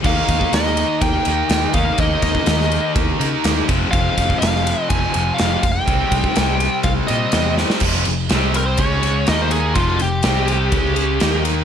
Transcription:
<<
  \new Staff \with { instrumentName = "Lead electric guitar" } { \time 4/4 \key f \minor \tempo 4 = 124 f''4 ees''4 g''4. f''8 | ees''8 ees''4. r2 | f''4 f''4 aes''4 f''8. g''16~ | g''2 f''8 ees''4 r8 |
r4. bes'16 c''16 des''4 ees''16 c''16 aes'8 | f'8 g'2. r8 | }
  \new Staff \with { instrumentName = "Distorted electric guitar" } { \clef bass \time 4/4 \key f \minor <ees bes ees'>2~ <ees bes ees'>8 <ees bes ees'>8 <ees bes ees'>4 | <ees bes ees'>2~ <ees bes ees'>8 <ees bes ees'>8 <ees bes ees'>8 <f, c f>8~ | <f, c f>2 <f, c f>8 <f, c f>4 r8 | <c g c'>2~ <c g c'>8 <c g c'>8 <c g c'>4 |
<f, c f>8 <f, c>8 <c g c'>4 <des aes des'>4 <ees bes ees'>4 | <f, c f>8 <f, c>8 <c g c'>4 <des aes des'>4 <ees bes ees'>4 | }
  \new Staff \with { instrumentName = "Overdriven electric guitar" } { \clef bass \time 4/4 \key f \minor <ees bes ees'>2.~ <ees bes ees'>8 <ees bes ees'>8 | <ees bes ees'>2.~ <ees bes ees'>8 <f, c f>8~ | <f, c f>2. <f, c f>8 r8 | <c g c'>2.~ <c g c'>8 <c g c'>8 |
<f, c f>8 <f, c>8 <c g c'>4 <des aes des'>4 <ees bes ees'>4 | <f, c f>8 <f, c>8 <c g c'>4 <des aes des'>4 <ees bes ees'>4 | }
  \new Staff \with { instrumentName = "Picked electric bass" } { \clef bass \time 4/4 \key f \minor ees,8 ees,8 ees,4 ees,8 ees,8 ees,8 ees,8 | ees,8 ees,8 ees,4 ees,8 des8 ees,8 f,,8 | f,,8 f,,8 f,,4 f,,8 f,,8 f,,8 f,,8 | c,8 c,8 c,4 c,8 bes,8 e,4 |
f,,8 f,,8 c,4 des,4 ees,4 | f,,8 f,,8 c,4 des,4 ees,4 | }
  \new DrumStaff \with { instrumentName = "Drums" } \drummode { \time 4/4 <cymc bd>8 <bd cymr>16 bd16 <cymr sn>16 sn16 cymr8 <bd cymr>8 cymr8 <cymr sn>8 <bd cymr>8 | <bd cymr>8 <bd cymr>16 bd16 <cymr sn>16 sn16 cymr8 <bd cymr>8 cymr8 <cymr sn>8 <bd cymr>8 | <bd cymr>8 <bd cymr>16 bd16 <cymr sn>16 sn16 cymr8 <bd cymr>8 cymr8 <cymr sn>8 <bd cymr>8 | <bd cymr>8 <bd cymr>16 bd16 <cymr sn>8 cymr8 <bd cymr>8 cymr8 <cymr sn>8 sn16 sn16 |
<cymc bd>16 sn16 cymr8 <cymr sn>8 cymr8 <bd cymr>8 cymr8 <cymr sn>8 cymr8 | <bd cymr>8 cymr8 <cymr sn>8 cymr8 <bd cymr>8 cymr8 <cymr sn>8 cymr8 | }
>>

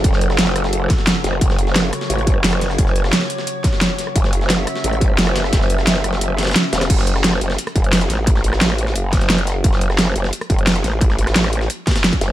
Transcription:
<<
  \new Staff \with { instrumentName = "Synth drone" } { \time 4/4 \key fis \minor \tempo 4 = 175 << { a'1 | cis''1~ | cis''1 | e''1~ |
e''1 | r1 | r1 | r1 |
r1 | } \\ { <cis fis fis'>1~ | <cis fis fis'>1~ | <cis fis fis'>1~ | <cis fis fis'>1~ |
<cis fis fis'>1 | r1 | r1 | r1 |
r1 | } >> }
  \new Staff \with { instrumentName = "Wobble bass" } { \clef bass \time 4/4 \key fis \minor fis,,4 fis,,4. r4 fis,,8 | fis,,4. r8 a,,4 fis,,4 | fis,,4 r2. | fis,,4. r8 a,,4 fis,,4 |
fis,,4 fis,,8 fis,,4. r8 e,,8 | fis,,4. fis,,8 r8 fis,,4 a,,8~ | a,,2 fis,,2 | fis,,4. fis,,8 r8 fis,,4 a,,8~ |
a,,2 r4. fis,,8 | }
  \new DrumStaff \with { instrumentName = "Drums" } \drummode { \time 4/4 <hh bd>16 sn16 hh16 <ss sn>16 <hh sn>16 sn16 <hh ss>16 sn16 hh8 <hh bd sn>16 sn16 <hh sn>8 <hh sn>16 ss16 | <hh bd>16 sn16 hh16 sn16 <hh sn>8 <hh ss>16 sn16 hh16 hh16 <hh bd>8 <hh hho sn>16 <hh ss>16 <hh sn>16 <ss sn>16 | <hh bd>16 sn16 hh16 <ss sn>16 <hh sn>16 sn16 hh16 sn16 hh8 <hh bd sn>16 sn16 <hh sn>8 <hh sn>16 ss16 | <hh bd>16 sn16 hh16 sn16 <hh sn>8 <hh ss>16 sn16 hh16 hh16 <hh bd>8 <hh hho sn>16 <hh ss>16 <hh sn>16 <ss sn>16 |
<hh bd sn>16 sn16 hh16 <ss sn>16 <hh sn>16 sn16 <hh ss>16 sn16 hh8 <hh sn>32 <hh sn>32 <hh sn>32 <hh sn>32 <hh sn>8 <hh sn>16 <hh ss sn>16 | <cymc hh bd>16 sn16 hh16 <ss sn>16 <hh sn>16 ss16 hh16 sn16 hh16 <hh ss>16 <hh bd>16 hh16 <hh hho sn>16 hh16 <hh sn>8 | <hh bd>16 sn16 hh16 <ss sn>16 <hh sn>16 <ss sn>16 hh16 sn16 hh8 <hh bd sn>16 <hh sn>16 <hh sn>16 hh16 <hh sn>8 | <hh bd>16 sn16 hh16 <ss sn>16 <hh sn>16 ss16 hh16 sn16 hh16 <hh ss>16 <hh bd>16 hh16 <hh hho sn>16 hh16 <hh sn>8 |
<hh bd>16 sn16 hh16 <hh ss sn>16 <hh sn>16 <ss sn>16 hh16 sn16 hh8 <hh bd sn>32 <hh sn>32 <hh sn>16 <hh sn>16 <hh bd>16 <hh sn>8 | }
>>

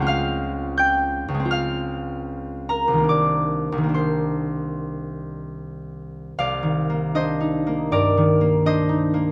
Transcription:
<<
  \new Staff \with { instrumentName = "Harp" } { \time 4/4 \key c \minor \tempo 4 = 78 <f'' f'''>4 <g'' g'''>4 <f'' f'''>4. <bes' bes''>8 | <d'' d'''>4 <c'' c'''>2. | <d'' f''>4 <c'' ees''>4 <bes' d''>4 <c'' ees''>4 | }
  \new Staff \with { instrumentName = "Harp" } { \time 4/4 \key c \minor << { <des, aes c' cis' f'>2 <des, aes c' f'>2 | <c, ees bes d'>4 <c, ees bes d'>2.~ | <c, ees bes d'>1 | } \\ { r1 | r1 | \tuplet 3/2 { c,8 ees8 bes8 d'8 ees'8 bes8 g,8 ees8 bes8 d'8 ees'8 bes8 } | } >> }
>>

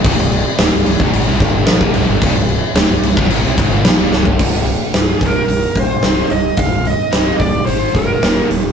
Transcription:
<<
  \new Staff \with { instrumentName = "Lead electric guitar" } { \time 4/4 \key c \minor \tempo 4 = 110 r1 | r1 | r4 aes'8 bes'4 c''4 ees''8 | f''8 ees''4 d''8 c''8 bes'4 r8 | }
  \new Staff \with { instrumentName = "Analog synth pad" } { \time 4/4 \key c \minor <c' g' d''>1~ | <c' g' d''>1 | r1 | r1 | }
  \new Staff \with { instrumentName = "Distorted electric guitar" } { \clef bass \time 4/4 \key c \minor <c, g,>16 <c, g,>8 r16 <d, a,>16 <c, g,>16 <c, g,>16 <c, g,>16 <aes, ees>16 <c g>16 <aes, ees>16 <g, d>16 <bes, f>16 <ees, bes,>16 <c, g,>16 <g, d>16 | <c, g,>16 <c, g,>8 r16 <d, a,>16 <c, g,>16 <c, g,>16 <c, g,>16 <aes, ees>16 <c g>16 <aes, ees>16 <g, d>16 <bes, f>16 <ees, bes,>16 <c, g,>16 <g, d>16 | r1 | r1 | }
  \new Staff \with { instrumentName = "Overdriven electric guitar" } { \clef bass \time 4/4 \key c \minor <c, g,>16 <c, g,>8 r16 <d, a,>16 <c, g,>16 <c, g,>16 <c, g,>16 <aes, ees>16 <c g>16 <aes, ees>16 <g, d>16 <bes, f>16 <ees, bes,>16 <c, g,>16 <g, d>16 | <c, g,>16 <c, g,>8 r16 <d, a,>16 <c, g,>16 <c, g,>16 <c, g,>16 <aes, ees>16 <c g>16 <aes, ees>16 <g, d>16 <bes, f>16 <ees, bes,>16 <c, g,>16 <g, d>16 | <c, g, c>8 <c, g,>8 <c, g,>8 <c, g, c>8 <c, g,>8 <c, g,>8 <c, g, c>8 <c, g,>8 | <c, g,>8 <c, g,>8 <c, g, c>8 <c, g,>8 <aes, ees aes>8 <aes, ees aes>8 <ees, bes, ees>8 <ees, bes,>8 | }
  \new Staff \with { instrumentName = "Fingered electric bass" } { \clef bass \time 4/4 \key c \minor c,,16 c,,8 r16 d,,16 c,,16 c,,16 c,,16 aes,,16 c,16 aes,,16 g,,16 bes,,16 ees,,16 c,,16 g,,16 | c,,16 c,,8 r16 d,,16 c,,16 c,,16 c,,16 aes,,16 c,16 aes,,16 g,,16 bes,,16 ees,,16 c,,16 g,,16 | c,,4 c,,8 c,,8 c,,8 bes,,8 c,,8 c,,8 | c,,4 c,,8 c,,8 aes,,8 f,,8 ees,,8 ees,,8 | }
  \new DrumStaff \with { instrumentName = "Drums" } \drummode { \time 4/4 <cymc bd>8 cymc8 <cymc sn>8 cymc16 bd16 cymc8 <cymc bd>8 <cymc sn>16 bd16 cymc8 | <cymc bd>8 cymc8 <cymc sn>8 cymc16 bd16 cymc8 <cymc bd>8 <cymc sn>8 sn16 tomfh16 | <cymc bd>8 hho8 <hho sn>8 <hho bd>8 hho8 <hho bd>8 <hho sn>8 hho8 | <hho bd>8 hho8 <hho sn>8 <hho bd>8 hho8 <hho bd>8 <hho sn>8 hho8 | }
>>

